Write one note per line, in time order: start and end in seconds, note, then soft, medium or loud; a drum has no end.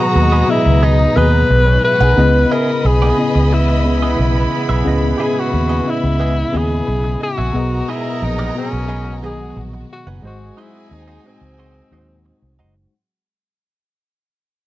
0.00 0.19 B2 medium
0.00 2.19 D#3 medium
0.00 2.13 F#3 medium
0.00 2.13 G#3 medium
0.00 0.49 B3 medium
0.00 1.80 B3 medium
0.00 2.13 B3 medium
0.00 1.80 D#4 medium
0.00 0.52 F#4 loud
0.00 1.80 F#4 medium
0.00 0.50 G#4 medium
0.00 2.15 G#4 medium
0.00 1.48 B4 medium
0.00 0.51 D#5 loud
0.00 1.80 D#5 medium
0.00 1.48 A#5 loud
0.16 0.42 D#2 medium
0.16 muted clean electric guitar stroke soft
0.32 0.48 D#4 medium
0.32 0.48 G#4 medium
0.32 0.49 B4 medium
0.32 0.49 D#5 medium
0.48 0.96 B2 medium
0.48 0.97 B3 medium
0.48 0.86 E4 loud
0.48 0.97 G#4 medium
0.48 0.98 D#5 medium
0.66 1.05 C#2 medium
0.66 muted clean electric guitar stroke medium
0.83 1.02 D#4 medium
0.83 1.19 D#4 loud
0.83 0.99 G#4 medium
0.83 0.99 B4 medium
0.83 0.98 D#5 medium
1.00 muted clean electric guitar stroke soft
1.15 1.43 D#2 medium
1.15 1.88 B2 medium
1.15 1.88 B3 medium
1.15 1.31 D#4 medium
1.15 1.32 G#4 medium
1.15 1.88 G#4 medium
1.15 1.84 B4 loud
1.15 1.32 B4 medium
1.15 1.89 B4 medium
1.15 1.32 D#5 medium
1.50 1.76 B1 medium
1.50 muted clean electric guitar stroke soft
1.58 1.67 B3 soft
1.58 1.67 B4 medium
1.66 1.75 C#4 medium
1.66 1.75 C#5 medium
1.66 muted clean electric guitar stroke soft
1.75 1.83 D#4 medium
1.75 1.83 D#5 medium
1.84 1.92 E4 medium
1.84 2.54 B4 loud
1.84 1.92 E5 medium
1.92 2.01 F#4 medium
1.92 2.01 F#5 medium
2.01 2.14 B1 medium
2.01 2.20 D#4 medium
2.01 2.09 G#4 medium
2.01 2.20 G#4 medium
2.01 2.20 B4 medium
2.01 2.20 F#5 medium
2.01 2.09 G#5 medium
2.09 2.17 A#4 medium
2.09 2.18 A#5 medium
2.16 2.43 C#2 loud
2.16 2.88 C#3 medium
2.16 7.51 C#3 medium
2.16 7.51 G#3 medium
2.16 2.89 B3 medium
2.16 7.11 B3 loud
2.16 10.20 B3 medium
2.16 2.89 E4 medium
2.16 4.84 D#5 medium
2.16 2.90 D#5 loud
2.16 7.11 B5 loud
2.51 2.70 B3 medium
2.51 2.70 E4 medium
2.51 2.71 G#4 medium
2.51 2.88 A#4 medium
2.51 2.71 D#5 medium
2.85 3.11 B1 medium
2.85 3.55 G#4 loud
2.85 muted clean electric guitar stroke soft
3.02 3.17 B3 medium
3.02 3.18 E4 medium
3.02 3.18 G#4 medium
3.02 3.18 D#5 medium
3.17 3.65 C#3 medium
3.17 3.66 B3 medium
3.17 3.66 E4 medium
3.17 3.66 D#5 medium
3.35 4.15 C#2 medium
3.35 muted clean electric guitar stroke soft
3.52 7.17 E3 medium
3.52 7.17 G#3 medium
3.52 7.17 B3 medium
3.52 7.17 E4 loud
3.52 4.53 E4 medium
3.52 muted clean electric guitar stroke soft
3.69 muted clean electric guitar stroke soft
3.85 4.57 C#3 medium
3.85 4.57 B3 medium
3.85 4.57 E4 medium
3.85 4.58 D#5 medium
4.02 4.18 B3 soft
4.02 4.18 E4 medium
4.02 4.19 G#4 medium
4.02 4.19 D#5 medium
4.19 4.45 B1 medium
4.19 muted clean electric guitar stroke soft
4.36 muted clean electric guitar stroke soft
4.69 4.82 B1 medium
4.69 4.89 B3 medium
4.69 4.89 E4 medium
4.69 4.89 G#4 medium
4.69 4.88 E5 medium
4.85 5.12 C#2 medium
4.85 5.57 C#3 loud
4.85 5.57 B3 loud
4.85 7.52 E4 medium
4.85 5.58 E4 loud
4.85 5.58 D#5 loud
5.17 5.39 B3 medium
5.17 5.39 E4 medium
5.17 5.24 G4 medium
5.17 5.39 G#4 medium
5.17 5.39 D#5 medium
5.23 5.41 G#4 loud
5.40 5.91 F#4 loud
5.53 5.79 D#2 loud
5.53 muted clean electric guitar stroke soft
5.69 5.85 B3 medium
5.69 5.85 E4 medium
5.69 5.86 G#4 medium
5.69 5.86 D#5 medium
5.85 6.34 C#3 medium
5.85 6.34 B3 medium
5.85 6.34 E4 medium
5.85 6.35 D#5 medium
5.85 muted clean electric guitar stroke soft
5.90 6.58 E4 loud
6.03 6.43 C#2 loud
6.03 muted clean electric guitar stroke soft
6.20 6.39 B3 medium
6.20 6.36 E4 medium
6.20 6.36 G#4 medium
6.20 6.35 D#5 medium
6.52 6.80 D#2 medium
6.52 7.25 C#3 medium
6.52 6.69 B3 medium
6.52 7.25 B3 medium
6.52 6.69 E4 medium
6.52 7.25 E4 medium
6.52 6.69 G#4 medium
6.52 6.69 D#5 medium
6.52 7.26 D#5 medium
6.57 7.23 G#4 loud
6.70 muted clean electric guitar stroke soft
6.87 7.14 B1 loud
6.87 muted clean electric guitar stroke soft
7.04 muted clean electric guitar stroke soft
7.21 7.29 D#4 medium
7.21 7.92 F#4 loud
7.21 7.29 D#5 medium
7.29 7.38 E4 medium
7.29 7.38 E5 medium
7.37 7.51 A#1 medium
7.37 7.58 B3 medium
7.37 7.57 E4 medium
7.37 7.46 F#4 medium
7.37 7.57 G#4 medium
7.37 7.57 E5 medium
7.37 7.46 F#5 medium
7.47 7.55 G#4 medium
7.47 7.55 G#5 medium
7.53 7.81 B1 medium
7.53 8.26 B2 loud
7.53 12.89 F#3 medium
7.53 10.21 G#3 medium
7.53 8.26 B3 medium
7.53 9.86 B3 medium
7.53 9.86 D#4 medium
7.53 12.89 F#4 medium
7.53 8.26 G#4 medium
7.53 9.86 G#4 medium
7.53 9.86 A#4 loud
7.53 9.86 D#5 medium
7.53 8.27 D#5 loud
7.53 9.86 A#5 loud
7.88 8.07 D#4 medium
7.88 8.25 E4 loud
7.88 8.08 G#4 medium
7.88 8.08 B4 medium
7.88 8.08 D#5 medium
8.22 8.48 A#1 medium
8.22 8.56 D#4 loud
8.22 muted clean electric guitar stroke soft
8.39 8.54 D#4 medium
8.39 8.54 G#4 medium
8.39 8.55 B4 medium
8.39 8.55 D#5 medium
8.55 9.03 B2 medium
8.55 9.03 B3 medium
8.55 9.20 C#4 loud
8.55 9.04 G#4 medium
8.55 9.04 D#5 medium
8.72 9.53 B1 medium
8.72 muted clean electric guitar stroke soft
8.88 9.08 D#4 medium
8.88 9.06 G#4 medium
8.88 9.05 B4 medium
8.88 9.05 D#5 medium
9.06 muted clean electric guitar stroke soft
9.21 9.94 D#3 medium
9.21 9.94 B3 medium
9.21 9.38 D#4 medium
9.21 9.38 G#4 medium
9.21 9.95 G#4 medium
9.21 9.38 B4 medium
9.21 9.95 D#5 medium
9.21 9.38 D#5 medium
9.26 9.62 G#4 loud
9.56 9.82 A#1 medium
9.56 muted clean electric guitar stroke soft
9.73 muted clean electric guitar stroke soft
9.93 10.07 F#4 loud
10.07 10.20 F#1 loud
10.07 10.27 D#4 medium
10.07 10.26 G#4 medium
10.07 10.26 B4 medium
10.07 10.26 F#5 medium
10.22 10.49 G#1 loud
10.22 10.94 G#3 loud
10.22 12.90 G#3 medium
10.22 12.55 C4 medium
10.22 12.90 C4 medium
10.22 12.55 D#4 medium
10.22 10.95 F#4 medium
10.22 12.55 G#4 medium
10.22 12.55 G#4 loud
10.22 10.96 C5 loud
10.22 10.95 D#5 medium
10.22 12.55 D#5 medium
10.22 12.55 G#5 loud
10.27 10.61 F#4 loud
10.57 10.76 D#4 medium
10.57 10.95 E4 medium
10.57 10.76 F#4 medium
10.57 10.77 C5 loud
10.57 10.77 D#5 medium
10.91 11.17 D#2 medium
10.91 11.29 D#4 medium
10.91 muted clean electric guitar stroke soft
11.08 11.24 D#4 medium
11.08 11.24 F#4 medium
11.08 11.24 C5 medium
11.08 11.25 D#5 medium
11.23 11.72 G#3 medium
11.23 11.72 D#4 medium
11.23 11.72 F#4 medium
11.23 11.73 D#5 medium
11.27 12.60 C4 medium
11.41 11.80 C#2 medium
11.41 muted clean electric guitar stroke soft
11.58 11.77 D#4 medium
11.58 11.75 F#4 medium
11.58 11.75 C5 medium
11.58 11.74 D#5 medium
11.90 12.30 D#2 loud
11.90 12.63 G#3 medium
11.90 12.63 D#4 medium
11.90 12.07 D#4 medium
11.90 12.64 F#4 medium
11.90 12.07 F#4 medium
11.90 12.07 C5 medium
11.90 12.64 C5 medium
11.90 12.07 D#5 medium
12.25 muted clean electric guitar stroke soft
12.42 12.61 C2 medium
12.59 12.85 F#1 medium
12.59 12.74 D#4 medium
12.59 12.74 F#4 medium
12.59 12.74 C5 medium
12.59 12.74 D#5 medium